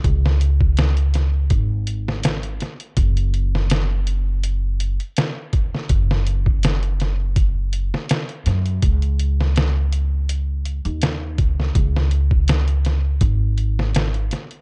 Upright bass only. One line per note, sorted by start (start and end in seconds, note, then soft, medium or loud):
0.04 1.48 C#2 loud
1.51 2.57 G#1 medium
2.97 4.96 F#1 loud
5.90 7.89 F#1 loud
8.46 8.79 F#2 loud
8.83 10.81 C#2 medium
10.85 11.39 D#2 medium
11.39 11.71 C#2 loud
11.75 13.18 C#2 medium
13.21 14.28 G#1 medium